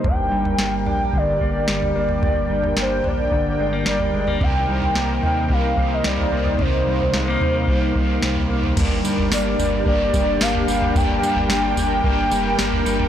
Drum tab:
CC |----------------|----------------|----------------|----------------|
TB |----------------|----------------|----------------|----------------|
SD |----o-------o---|----o-------o---|----o-------o---|----o-------o---|
FT |o--o--o------o-o|o--o--o------o-o|o--o--o------o-o|o--o--o------o-o|
BD |o-------o-o-----|o-------o-------|o-------o-o-----|o-------o-o-----|

CC |x---------------|----------------|
TB |x-x-x-x---x-x-x-|x-x-x-x---x-x-x-|
SD |----o-------o---|----o-------o---|
FT |o--o--o------o-o|o--o--o------o-o|
BD |o-------o-o-----|o-------o-------|